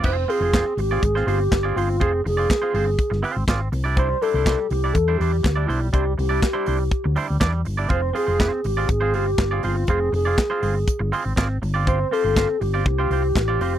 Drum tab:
CC |x---------------|----------------|----------------|----------------|
HH |--o-x-o-x-o-x-o-|x-o-x-o-x-o-x-o-|x-o-x-o-x-o-x-o-|x-o-x-o-x-o-x-o-|
CP |----x-------x---|----x-------x---|----x-------x---|----x-------x---|
SD |----o----o--o---|----o----o--o---|----o-------o---|----o-------o---|
BD |o---o---o---o---|o---o---o---o---|o---o---o---o---|o---o---o---o---|

CC |----------------|----------------|----------------|
HH |x-o-x-o-x-o-x-o-|x-o-x-o-x-o-x-o-|x-o-x-o-x-o-x-o-|
CP |----x-------x---|----x-------x---|----x-------x---|
SD |----o-------o---|----o-------o---|----o-------o---|
BD |o---o---o---o---|o---o---o---o---|o---o---o---o---|